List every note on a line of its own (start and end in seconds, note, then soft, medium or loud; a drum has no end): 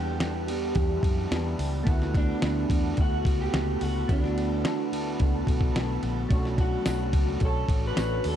0.00 0.72 E2 loud
0.00 0.48 E3 medium
0.00 1.81 G3 medium
0.00 0.50 B3 medium
0.00 1.82 B3 medium
0.00 0.48 D4 medium
0.00 1.83 D4 medium
0.00 0.46 G4 medium
0.00 1.55 G4 medium
0.00 1.84 G4 medium
0.00 1.84 E5 medium
0.00 1.84 F#5 medium
0.00 1.82 A5 medium
0.00 8.36 B5 medium
0.20 snare loud
0.20 ride medium
0.47 0.74 B3 medium
0.47 0.75 D4 medium
0.47 0.75 G4 medium
0.47 ride medium
0.75 0.98 E2 loud
0.75 1.29 E3 medium
0.75 1.30 B3 medium
0.75 1.31 D4 medium
0.75 1.32 G4 medium
0.75 kick medium
0.75 ride medium
1.03 1.25 F#2 medium
1.03 kick medium
1.03 ride medium
1.30 1.54 E2 loud
1.30 1.85 E3 medium
1.30 1.87 B3 medium
1.30 1.88 D4 medium
1.30 1.88 G4 medium
1.30 snare loud
1.30 ride medium
1.59 1.81 C#2 medium
1.59 open hi-hat soft
1.59 ride medium
1.84 2.31 D2 loud
1.84 2.97 D3 loud
1.84 4.04 A3 medium
1.84 2.98 A3 medium
1.84 4.04 B3 medium
1.84 4.05 E4 medium
1.84 8.36 A4 medium
1.84 6.27 F#5 medium
1.84 8.36 A5 medium
1.84 kick loud
1.84 ride medium
1.89 2.99 B3 loud
1.89 3.00 F#4 loud
1.89 4.06 F#5 medium
2.02 snare soft
2.15 3.02 D4 medium
2.15 kick loud
2.15 ride medium
2.42 2.65 D2 medium
2.42 snare loud
2.42 ride medium
2.70 2.92 E2 loud
2.70 kick loud
2.70 ride medium
2.97 3.20 D2 loud
2.97 3.52 D3 medium
2.97 3.53 A3 medium
2.97 3.55 B3 medium
2.97 3.55 F#4 medium
2.97 3.41 F#4 loud
2.97 kick loud
2.97 ride medium
3.25 3.48 C#2 medium
3.25 kick medium
3.25 ride medium
3.41 3.82 G4 loud
3.53 3.76 C#2 loud
3.53 4.07 D3 medium
3.53 4.08 A3 medium
3.53 4.10 B3 medium
3.53 4.11 F#4 medium
3.53 snare loud
3.53 ride medium
3.81 4.03 C#2 medium
3.81 4.11 F#4 loud
3.81 open hi-hat soft
3.81 ride medium
4.08 4.64 D2 loud
4.08 5.19 D3 medium
4.08 6.26 A3 medium
4.08 5.20 A3 medium
4.08 6.27 B3 medium
4.08 5.21 B3 medium
4.08 6.00 D4 medium
4.08 6.28 E4 medium
4.08 5.22 F#4 medium
4.08 kick loud
4.08 ride medium
4.12 6.29 F#4 medium
4.24 snare soft
4.38 ride medium
4.64 4.92 D3 loud
4.64 snare loud
4.64 ride medium
4.92 5.14 D2 medium
4.92 ride medium
5.19 5.42 C#2 medium
5.19 5.74 D3 medium
5.19 5.75 A3 medium
5.19 5.76 B3 medium
5.19 5.77 F#4 medium
5.19 kick medium
5.19 ride medium
5.47 5.69 B1 medium
5.47 kick medium
5.47 ride medium
5.61 kick medium
5.75 5.98 B1 medium
5.75 6.30 D3 medium
5.75 6.31 A3 medium
5.75 6.32 B3 medium
5.75 6.32 F#4 medium
5.75 snare loud
5.75 ride medium
6.03 6.25 A#1 loud
6.03 ride medium
6.29 6.75 B1 loud
6.29 7.41 B2 medium
6.29 7.42 F#3 medium
6.29 7.93 A3 medium
6.29 7.39 A3 loud
6.29 7.94 C#4 medium
6.29 7.95 D4 medium
6.29 7.41 D4 medium
6.29 7.41 F#4 loud
6.29 8.36 C#5 medium
6.29 kick loud
6.29 ride medium
6.33 7.95 F#4 medium
6.33 7.42 C#5 loud
6.45 snare soft
6.58 7.39 F#4 medium
6.58 kick medium
6.58 ride medium
6.86 7.13 B1 loud
6.86 snare loud
6.86 ride medium
6.86 tambourine medium
7.13 7.36 C#2 medium
7.13 kick loud
7.13 ride medium
7.40 7.64 B1 loud
7.40 7.95 A3 medium
7.40 7.97 D4 medium
7.40 7.97 F#4 medium
7.40 7.98 C#5 medium
7.40 kick loud
7.40 ride medium
7.45 7.86 A4 loud
7.69 7.91 A1 loud
7.69 kick medium
7.69 ride medium
7.87 8.27 B4 loud
7.96 8.19 A1 medium
7.96 8.36 A3 soft
7.96 8.36 A3 medium
7.96 8.36 C#4 soft
7.96 8.36 D4 medium
7.96 8.36 D4 soft
7.96 8.36 F#4 medium
7.96 8.36 C#5 medium
7.96 snare loud
7.96 ride medium
7.96 tambourine medium
8.24 8.36 D#2 medium
8.24 8.36 A4 medium
8.24 open hi-hat soft
8.24 ride soft